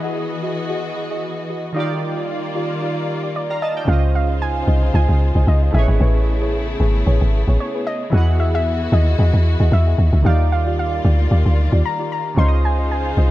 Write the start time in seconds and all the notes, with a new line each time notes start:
Already playing: E3 B3 E4 F#4 G#4 D#5
0.04 F#4 G#4 D#5
0.43 F#4 G#4 D#5
0.69 F#4 G#4 D#5
1.10 F#4 G#4 D#5
1.49 F#4 G#4 D#5
1.73 D#3 G3 A#3 D#4 F4 G4 D5
1.78 G4 D5
2.17 F4 G4 D5
2.55 F4 G4 D5
2.81 F4 G4 D5
3.23 F4 G4 D5
3.36 D5
3.49 F4 G4 D5 F5 A#5
3.62 D#5 A5
3.77 D5 G5
3.85 C#2 C#3 C#4 D#4 F4 G#4 C5 D#5 F5
3.91 C5 D#5
4.15 F5
4.29 F4 C5 D#5
4.42 G#5
4.67 C2 F4 C5 D#5
4.94 C#2 F4 C5 D#5 G#5
5.09 C#2
5.35 C2 F4 C5 D#5
5.47 C#2 D#5
5.62 F4 C5 D#5
5.71 A1 A3 B3 E4 G#4 E5
5.77 B4 C#5
5.88 G#1
6.00 A1 G#4 B4 C#5
6.42 G#4 B4 C#5
6.80 G#1 G#4 B4 C#5
7.07 A1 G#4 B4 C#5
7.21 G#1
7.48 A1 G#4 B4 C#5
7.60 C#5
7.74 G#4 B4 C#5
7.87 D#5
8.10 E2 E3 E4 F#4 G#4 D#5
8.15 G#4 F#5
8.40 E5
8.54 F#4 G#4 E5
8.92 D#2 F#4 G#4 D#5
9.19 E2 F#4 G#4 D#5
9.33 E2
9.60 D#2 F#4 G#4 D#5
9.72 E2 E5
9.87 F#4 G#4 D#5
9.98 D#2
10.13 C#2
10.22 D#2 D#3 G3 A#3 D#4 F4 G4 D5
10.26 G4 D5 F5
10.52 F5
10.66 F4 G4 D5
10.79 F5
11.05 D2 F4 G4 D5
11.31 D#2 F4 G4 D5
11.46 D2
11.72 D#2 F4 G4 D5
11.85 A#5
11.99 F4 G4 D5
12.12 A#5
12.35 C#2 C#3 C#4 D#4 F4 G#4 C5 D#5 C6
12.40 C5 C#5
12.48 D#5
12.65 G#5
12.78 F4 C5 D#5
12.91 G#5
13.17 C2 F4 C5 D#5